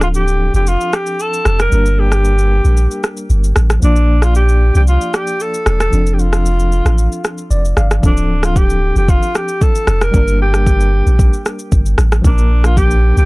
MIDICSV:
0, 0, Header, 1, 5, 480
1, 0, Start_track
1, 0, Key_signature, -1, "minor"
1, 0, Tempo, 526316
1, 1568, Time_signature, 4, 2, 24, 8
1, 12087, End_track
2, 0, Start_track
2, 0, Title_t, "Alto saxophone"
2, 0, Program_c, 0, 65
2, 27, Note_on_c, 0, 65, 86
2, 76, Note_off_c, 0, 65, 0
2, 141, Note_on_c, 0, 67, 88
2, 474, Note_off_c, 0, 67, 0
2, 506, Note_on_c, 0, 67, 88
2, 622, Note_on_c, 0, 65, 87
2, 635, Note_off_c, 0, 67, 0
2, 862, Note_on_c, 0, 67, 88
2, 876, Note_off_c, 0, 65, 0
2, 1103, Note_on_c, 0, 69, 100
2, 1116, Note_off_c, 0, 67, 0
2, 1460, Note_off_c, 0, 69, 0
2, 1469, Note_on_c, 0, 70, 110
2, 1821, Note_on_c, 0, 67, 97
2, 1835, Note_off_c, 0, 70, 0
2, 2774, Note_off_c, 0, 67, 0
2, 3499, Note_on_c, 0, 62, 82
2, 3860, Note_on_c, 0, 65, 90
2, 3874, Note_off_c, 0, 62, 0
2, 3969, Note_off_c, 0, 65, 0
2, 3975, Note_on_c, 0, 67, 99
2, 4311, Note_off_c, 0, 67, 0
2, 4340, Note_on_c, 0, 67, 92
2, 4390, Note_off_c, 0, 67, 0
2, 4455, Note_on_c, 0, 65, 91
2, 4698, Note_on_c, 0, 67, 93
2, 4711, Note_off_c, 0, 65, 0
2, 4937, Note_on_c, 0, 69, 104
2, 4950, Note_off_c, 0, 67, 0
2, 5297, Note_off_c, 0, 69, 0
2, 5301, Note_on_c, 0, 69, 108
2, 5595, Note_on_c, 0, 67, 60
2, 5608, Note_off_c, 0, 69, 0
2, 5653, Note_on_c, 0, 65, 90
2, 5667, Note_off_c, 0, 67, 0
2, 6610, Note_off_c, 0, 65, 0
2, 7339, Note_on_c, 0, 62, 81
2, 7703, Note_on_c, 0, 65, 90
2, 7717, Note_off_c, 0, 62, 0
2, 7818, Note_on_c, 0, 67, 90
2, 7832, Note_off_c, 0, 65, 0
2, 8178, Note_off_c, 0, 67, 0
2, 8183, Note_on_c, 0, 67, 94
2, 8295, Note_on_c, 0, 65, 89
2, 8308, Note_off_c, 0, 67, 0
2, 8534, Note_on_c, 0, 67, 90
2, 8548, Note_off_c, 0, 65, 0
2, 8777, Note_on_c, 0, 69, 107
2, 8791, Note_off_c, 0, 67, 0
2, 9143, Note_on_c, 0, 70, 108
2, 9157, Note_off_c, 0, 69, 0
2, 9493, Note_off_c, 0, 70, 0
2, 9499, Note_on_c, 0, 67, 94
2, 10417, Note_off_c, 0, 67, 0
2, 11173, Note_on_c, 0, 62, 80
2, 11543, Note_on_c, 0, 65, 89
2, 11556, Note_off_c, 0, 62, 0
2, 11647, Note_off_c, 0, 65, 0
2, 11653, Note_on_c, 0, 67, 95
2, 11990, Note_off_c, 0, 67, 0
2, 12019, Note_on_c, 0, 67, 100
2, 12087, Note_off_c, 0, 67, 0
2, 12087, End_track
3, 0, Start_track
3, 0, Title_t, "Tine electric piano"
3, 0, Program_c, 1, 4
3, 0, Control_c, 1, 64, 127
3, 0, Note_on_c, 1, 53, 65
3, 0, Note_on_c, 1, 60, 56
3, 0, Note_on_c, 1, 62, 58
3, 0, Note_on_c, 1, 69, 71
3, 1520, Note_off_c, 1, 53, 0
3, 1528, Note_off_c, 1, 60, 0
3, 1535, Note_off_c, 1, 62, 0
3, 1543, Note_off_c, 1, 69, 0
3, 1546, Note_on_c, 1, 55, 67
3, 1562, Note_on_c, 1, 58, 58
3, 1576, Note_on_c, 1, 62, 60
3, 1581, Control_c, 1, 64, 0
3, 1592, Note_on_c, 1, 70, 74
3, 1763, Control_c, 1, 64, 127
3, 3440, Note_off_c, 1, 55, 0
3, 3448, Note_off_c, 1, 58, 0
3, 3455, Note_off_c, 1, 62, 0
3, 3463, Note_off_c, 1, 70, 0
3, 3464, Note_on_c, 1, 53, 67
3, 3480, Note_on_c, 1, 58, 61
3, 3496, Note_on_c, 1, 62, 58
3, 3499, Control_c, 1, 64, 0
3, 3510, Note_on_c, 1, 74, 68
3, 3682, Control_c, 1, 64, 127
3, 5359, Note_off_c, 1, 53, 0
3, 5367, Note_off_c, 1, 58, 0
3, 5375, Note_off_c, 1, 62, 0
3, 5382, Note_off_c, 1, 74, 0
3, 5384, Note_on_c, 1, 53, 63
3, 5399, Note_on_c, 1, 60, 57
3, 5414, Note_on_c, 1, 62, 60
3, 5419, Control_c, 1, 64, 0
3, 5429, Note_on_c, 1, 69, 70
3, 5606, Control_c, 1, 64, 127
3, 6845, Note_on_c, 1, 74, 69
3, 7069, Note_off_c, 1, 74, 0
3, 7085, Note_on_c, 1, 77, 74
3, 7279, Note_off_c, 1, 53, 0
3, 7287, Note_off_c, 1, 60, 0
3, 7294, Note_off_c, 1, 62, 0
3, 7302, Note_off_c, 1, 69, 0
3, 7302, Note_on_c, 1, 52, 52
3, 7309, Note_off_c, 1, 77, 0
3, 7317, Note_on_c, 1, 60, 62
3, 7333, Note_on_c, 1, 62, 58
3, 7339, Control_c, 1, 64, 0
3, 7349, Note_on_c, 1, 69, 73
3, 7359, Note_on_c, 1, 53, 65
3, 7375, Note_off_c, 1, 52, 0
3, 7500, Control_c, 1, 64, 127
3, 9206, Note_off_c, 1, 60, 0
3, 9214, Note_off_c, 1, 62, 0
3, 9222, Note_off_c, 1, 69, 0
3, 9223, Note_on_c, 1, 55, 66
3, 9227, Note_off_c, 1, 53, 0
3, 9236, Note_on_c, 1, 58, 60
3, 9252, Note_on_c, 1, 62, 61
3, 9261, Control_c, 1, 64, 0
3, 9268, Note_on_c, 1, 70, 73
3, 9416, Control_c, 1, 64, 127
3, 11119, Note_off_c, 1, 55, 0
3, 11125, Note_off_c, 1, 58, 0
3, 11133, Note_off_c, 1, 62, 0
3, 11141, Note_off_c, 1, 70, 0
3, 11143, Note_on_c, 1, 53, 64
3, 11160, Note_on_c, 1, 58, 63
3, 11176, Note_on_c, 1, 60, 48
3, 11180, Control_c, 1, 64, 0
3, 11190, Note_on_c, 1, 70, 73
3, 11232, Note_off_c, 1, 60, 0
3, 11232, Note_on_c, 1, 62, 62
3, 11337, Control_c, 1, 64, 127
3, 12087, Note_off_c, 1, 53, 0
3, 12087, Note_off_c, 1, 58, 0
3, 12087, Note_off_c, 1, 62, 0
3, 12087, Note_off_c, 1, 70, 0
3, 12087, End_track
4, 0, Start_track
4, 0, Title_t, "Sub bass"
4, 0, Program_c, 2, 38
4, 0, Note_on_c, 2, 26, 111
4, 456, Note_off_c, 2, 26, 0
4, 493, Note_on_c, 2, 29, 85
4, 701, Note_off_c, 2, 29, 0
4, 1329, Note_on_c, 2, 29, 97
4, 1537, Note_off_c, 2, 29, 0
4, 1570, Note_on_c, 2, 31, 108
4, 2377, Note_off_c, 2, 31, 0
4, 2414, Note_on_c, 2, 34, 81
4, 2622, Note_off_c, 2, 34, 0
4, 3008, Note_on_c, 2, 31, 100
4, 3216, Note_off_c, 2, 31, 0
4, 3248, Note_on_c, 2, 33, 96
4, 3456, Note_off_c, 2, 33, 0
4, 3489, Note_on_c, 2, 34, 113
4, 4297, Note_off_c, 2, 34, 0
4, 4333, Note_on_c, 2, 36, 83
4, 4541, Note_off_c, 2, 36, 0
4, 5165, Note_on_c, 2, 28, 91
4, 5375, Note_off_c, 2, 28, 0
4, 5406, Note_on_c, 2, 29, 111
4, 6215, Note_off_c, 2, 29, 0
4, 6251, Note_on_c, 2, 33, 96
4, 6460, Note_off_c, 2, 33, 0
4, 6845, Note_on_c, 2, 29, 94
4, 7055, Note_off_c, 2, 29, 0
4, 7085, Note_on_c, 2, 31, 91
4, 7295, Note_off_c, 2, 31, 0
4, 7326, Note_on_c, 2, 26, 107
4, 8135, Note_off_c, 2, 26, 0
4, 8170, Note_on_c, 2, 29, 89
4, 8380, Note_off_c, 2, 29, 0
4, 9006, Note_on_c, 2, 29, 94
4, 9215, Note_off_c, 2, 29, 0
4, 9246, Note_on_c, 2, 31, 109
4, 10055, Note_off_c, 2, 31, 0
4, 10091, Note_on_c, 2, 34, 80
4, 10300, Note_off_c, 2, 34, 0
4, 10689, Note_on_c, 2, 31, 101
4, 10897, Note_off_c, 2, 31, 0
4, 10927, Note_on_c, 2, 33, 94
4, 11136, Note_off_c, 2, 33, 0
4, 11167, Note_on_c, 2, 34, 119
4, 11975, Note_off_c, 2, 34, 0
4, 12012, Note_on_c, 2, 36, 86
4, 12087, Note_off_c, 2, 36, 0
4, 12087, End_track
5, 0, Start_track
5, 0, Title_t, "Drums"
5, 11, Note_on_c, 9, 37, 85
5, 13, Note_on_c, 9, 82, 55
5, 103, Note_off_c, 9, 37, 0
5, 104, Note_off_c, 9, 82, 0
5, 129, Note_on_c, 9, 82, 67
5, 220, Note_off_c, 9, 82, 0
5, 252, Note_on_c, 9, 82, 50
5, 343, Note_off_c, 9, 82, 0
5, 494, Note_on_c, 9, 82, 51
5, 585, Note_off_c, 9, 82, 0
5, 607, Note_on_c, 9, 82, 64
5, 698, Note_off_c, 9, 82, 0
5, 736, Note_on_c, 9, 82, 51
5, 827, Note_off_c, 9, 82, 0
5, 847, Note_on_c, 9, 82, 51
5, 851, Note_on_c, 9, 37, 91
5, 938, Note_off_c, 9, 82, 0
5, 942, Note_off_c, 9, 37, 0
5, 970, Note_on_c, 9, 82, 47
5, 1061, Note_off_c, 9, 82, 0
5, 1089, Note_on_c, 9, 82, 70
5, 1180, Note_off_c, 9, 82, 0
5, 1216, Note_on_c, 9, 82, 61
5, 1308, Note_off_c, 9, 82, 0
5, 1325, Note_on_c, 9, 37, 98
5, 1329, Note_on_c, 9, 82, 59
5, 1416, Note_off_c, 9, 37, 0
5, 1420, Note_off_c, 9, 82, 0
5, 1454, Note_on_c, 9, 82, 56
5, 1455, Note_on_c, 9, 37, 96
5, 1545, Note_off_c, 9, 82, 0
5, 1547, Note_off_c, 9, 37, 0
5, 1568, Note_on_c, 9, 82, 74
5, 1659, Note_off_c, 9, 82, 0
5, 1693, Note_on_c, 9, 82, 53
5, 1784, Note_off_c, 9, 82, 0
5, 1931, Note_on_c, 9, 37, 84
5, 1932, Note_on_c, 9, 82, 56
5, 2022, Note_off_c, 9, 37, 0
5, 2023, Note_off_c, 9, 82, 0
5, 2048, Note_on_c, 9, 82, 69
5, 2140, Note_off_c, 9, 82, 0
5, 2174, Note_on_c, 9, 82, 51
5, 2265, Note_off_c, 9, 82, 0
5, 2414, Note_on_c, 9, 82, 54
5, 2505, Note_off_c, 9, 82, 0
5, 2526, Note_on_c, 9, 82, 61
5, 2617, Note_off_c, 9, 82, 0
5, 2654, Note_on_c, 9, 82, 52
5, 2745, Note_off_c, 9, 82, 0
5, 2767, Note_on_c, 9, 82, 51
5, 2771, Note_on_c, 9, 37, 95
5, 2858, Note_off_c, 9, 82, 0
5, 2862, Note_off_c, 9, 37, 0
5, 2889, Note_on_c, 9, 82, 49
5, 2981, Note_off_c, 9, 82, 0
5, 3008, Note_on_c, 9, 82, 68
5, 3100, Note_off_c, 9, 82, 0
5, 3135, Note_on_c, 9, 82, 59
5, 3226, Note_off_c, 9, 82, 0
5, 3244, Note_on_c, 9, 37, 100
5, 3247, Note_on_c, 9, 82, 58
5, 3335, Note_off_c, 9, 37, 0
5, 3338, Note_off_c, 9, 82, 0
5, 3373, Note_on_c, 9, 82, 59
5, 3374, Note_on_c, 9, 37, 98
5, 3464, Note_off_c, 9, 82, 0
5, 3466, Note_off_c, 9, 37, 0
5, 3486, Note_on_c, 9, 82, 76
5, 3577, Note_off_c, 9, 82, 0
5, 3611, Note_on_c, 9, 82, 52
5, 3702, Note_off_c, 9, 82, 0
5, 3849, Note_on_c, 9, 37, 88
5, 3851, Note_on_c, 9, 82, 55
5, 3941, Note_off_c, 9, 37, 0
5, 3942, Note_off_c, 9, 82, 0
5, 3965, Note_on_c, 9, 82, 67
5, 4056, Note_off_c, 9, 82, 0
5, 4091, Note_on_c, 9, 82, 52
5, 4182, Note_off_c, 9, 82, 0
5, 4331, Note_on_c, 9, 82, 53
5, 4423, Note_off_c, 9, 82, 0
5, 4444, Note_on_c, 9, 82, 65
5, 4535, Note_off_c, 9, 82, 0
5, 4570, Note_on_c, 9, 82, 52
5, 4661, Note_off_c, 9, 82, 0
5, 4683, Note_on_c, 9, 82, 50
5, 4687, Note_on_c, 9, 37, 92
5, 4774, Note_off_c, 9, 82, 0
5, 4778, Note_off_c, 9, 37, 0
5, 4806, Note_on_c, 9, 82, 51
5, 4897, Note_off_c, 9, 82, 0
5, 4924, Note_on_c, 9, 82, 67
5, 5015, Note_off_c, 9, 82, 0
5, 5052, Note_on_c, 9, 82, 59
5, 5143, Note_off_c, 9, 82, 0
5, 5163, Note_on_c, 9, 37, 100
5, 5166, Note_on_c, 9, 82, 58
5, 5254, Note_off_c, 9, 37, 0
5, 5257, Note_off_c, 9, 82, 0
5, 5291, Note_on_c, 9, 82, 59
5, 5293, Note_on_c, 9, 37, 96
5, 5383, Note_off_c, 9, 82, 0
5, 5384, Note_off_c, 9, 37, 0
5, 5405, Note_on_c, 9, 82, 73
5, 5496, Note_off_c, 9, 82, 0
5, 5531, Note_on_c, 9, 82, 54
5, 5622, Note_off_c, 9, 82, 0
5, 5645, Note_on_c, 9, 82, 50
5, 5737, Note_off_c, 9, 82, 0
5, 5770, Note_on_c, 9, 37, 87
5, 5771, Note_on_c, 9, 82, 56
5, 5861, Note_off_c, 9, 37, 0
5, 5863, Note_off_c, 9, 82, 0
5, 5889, Note_on_c, 9, 82, 70
5, 5980, Note_off_c, 9, 82, 0
5, 6013, Note_on_c, 9, 82, 52
5, 6105, Note_off_c, 9, 82, 0
5, 6129, Note_on_c, 9, 82, 54
5, 6220, Note_off_c, 9, 82, 0
5, 6254, Note_on_c, 9, 82, 53
5, 6255, Note_on_c, 9, 37, 81
5, 6345, Note_off_c, 9, 82, 0
5, 6346, Note_off_c, 9, 37, 0
5, 6366, Note_on_c, 9, 82, 62
5, 6458, Note_off_c, 9, 82, 0
5, 6495, Note_on_c, 9, 82, 52
5, 6586, Note_off_c, 9, 82, 0
5, 6604, Note_on_c, 9, 82, 49
5, 6609, Note_on_c, 9, 37, 91
5, 6696, Note_off_c, 9, 82, 0
5, 6700, Note_off_c, 9, 37, 0
5, 6729, Note_on_c, 9, 82, 51
5, 6820, Note_off_c, 9, 82, 0
5, 6848, Note_on_c, 9, 82, 69
5, 6939, Note_off_c, 9, 82, 0
5, 6976, Note_on_c, 9, 82, 61
5, 7067, Note_off_c, 9, 82, 0
5, 7084, Note_on_c, 9, 37, 100
5, 7088, Note_on_c, 9, 82, 55
5, 7175, Note_off_c, 9, 37, 0
5, 7179, Note_off_c, 9, 82, 0
5, 7213, Note_on_c, 9, 82, 60
5, 7215, Note_on_c, 9, 37, 98
5, 7304, Note_off_c, 9, 82, 0
5, 7306, Note_off_c, 9, 37, 0
5, 7326, Note_on_c, 9, 36, 108
5, 7326, Note_on_c, 9, 82, 71
5, 7417, Note_off_c, 9, 36, 0
5, 7417, Note_off_c, 9, 82, 0
5, 7451, Note_on_c, 9, 82, 55
5, 7542, Note_off_c, 9, 82, 0
5, 7688, Note_on_c, 9, 37, 88
5, 7689, Note_on_c, 9, 82, 54
5, 7779, Note_off_c, 9, 37, 0
5, 7780, Note_off_c, 9, 82, 0
5, 7806, Note_on_c, 9, 36, 86
5, 7806, Note_on_c, 9, 82, 67
5, 7897, Note_off_c, 9, 36, 0
5, 7898, Note_off_c, 9, 82, 0
5, 7931, Note_on_c, 9, 82, 53
5, 8022, Note_off_c, 9, 82, 0
5, 8172, Note_on_c, 9, 82, 51
5, 8263, Note_off_c, 9, 82, 0
5, 8285, Note_on_c, 9, 36, 102
5, 8285, Note_on_c, 9, 82, 61
5, 8376, Note_off_c, 9, 36, 0
5, 8376, Note_off_c, 9, 82, 0
5, 8414, Note_on_c, 9, 82, 52
5, 8505, Note_off_c, 9, 82, 0
5, 8526, Note_on_c, 9, 82, 51
5, 8530, Note_on_c, 9, 37, 90
5, 8617, Note_off_c, 9, 82, 0
5, 8621, Note_off_c, 9, 37, 0
5, 8649, Note_on_c, 9, 82, 50
5, 8740, Note_off_c, 9, 82, 0
5, 8767, Note_on_c, 9, 82, 69
5, 8769, Note_on_c, 9, 36, 86
5, 8858, Note_off_c, 9, 82, 0
5, 8860, Note_off_c, 9, 36, 0
5, 8893, Note_on_c, 9, 82, 58
5, 8985, Note_off_c, 9, 82, 0
5, 9004, Note_on_c, 9, 37, 98
5, 9007, Note_on_c, 9, 82, 60
5, 9095, Note_off_c, 9, 37, 0
5, 9098, Note_off_c, 9, 82, 0
5, 9132, Note_on_c, 9, 82, 59
5, 9133, Note_on_c, 9, 37, 97
5, 9223, Note_off_c, 9, 82, 0
5, 9224, Note_off_c, 9, 37, 0
5, 9246, Note_on_c, 9, 36, 113
5, 9246, Note_on_c, 9, 82, 72
5, 9337, Note_off_c, 9, 36, 0
5, 9337, Note_off_c, 9, 82, 0
5, 9372, Note_on_c, 9, 82, 55
5, 9463, Note_off_c, 9, 82, 0
5, 9610, Note_on_c, 9, 37, 85
5, 9612, Note_on_c, 9, 82, 57
5, 9701, Note_off_c, 9, 37, 0
5, 9703, Note_off_c, 9, 82, 0
5, 9726, Note_on_c, 9, 36, 86
5, 9727, Note_on_c, 9, 82, 71
5, 9818, Note_off_c, 9, 36, 0
5, 9819, Note_off_c, 9, 82, 0
5, 9853, Note_on_c, 9, 82, 53
5, 9944, Note_off_c, 9, 82, 0
5, 10093, Note_on_c, 9, 82, 51
5, 10184, Note_off_c, 9, 82, 0
5, 10206, Note_on_c, 9, 36, 102
5, 10207, Note_on_c, 9, 82, 65
5, 10297, Note_off_c, 9, 36, 0
5, 10298, Note_off_c, 9, 82, 0
5, 10335, Note_on_c, 9, 82, 52
5, 10427, Note_off_c, 9, 82, 0
5, 10447, Note_on_c, 9, 82, 51
5, 10451, Note_on_c, 9, 37, 88
5, 10538, Note_off_c, 9, 82, 0
5, 10542, Note_off_c, 9, 37, 0
5, 10569, Note_on_c, 9, 82, 49
5, 10660, Note_off_c, 9, 82, 0
5, 10687, Note_on_c, 9, 82, 68
5, 10689, Note_on_c, 9, 36, 92
5, 10778, Note_off_c, 9, 82, 0
5, 10780, Note_off_c, 9, 36, 0
5, 10813, Note_on_c, 9, 82, 58
5, 10905, Note_off_c, 9, 82, 0
5, 10925, Note_on_c, 9, 37, 98
5, 10928, Note_on_c, 9, 82, 60
5, 11016, Note_off_c, 9, 37, 0
5, 11019, Note_off_c, 9, 82, 0
5, 11053, Note_on_c, 9, 82, 55
5, 11055, Note_on_c, 9, 37, 95
5, 11145, Note_off_c, 9, 82, 0
5, 11146, Note_off_c, 9, 37, 0
5, 11167, Note_on_c, 9, 36, 112
5, 11168, Note_on_c, 9, 82, 74
5, 11258, Note_off_c, 9, 36, 0
5, 11259, Note_off_c, 9, 82, 0
5, 11291, Note_on_c, 9, 82, 52
5, 11382, Note_off_c, 9, 82, 0
5, 11528, Note_on_c, 9, 37, 89
5, 11529, Note_on_c, 9, 82, 57
5, 11619, Note_off_c, 9, 37, 0
5, 11621, Note_off_c, 9, 82, 0
5, 11647, Note_on_c, 9, 36, 85
5, 11647, Note_on_c, 9, 82, 67
5, 11738, Note_off_c, 9, 36, 0
5, 11739, Note_off_c, 9, 82, 0
5, 11772, Note_on_c, 9, 82, 51
5, 11863, Note_off_c, 9, 82, 0
5, 12012, Note_on_c, 9, 82, 52
5, 12087, Note_off_c, 9, 82, 0
5, 12087, End_track
0, 0, End_of_file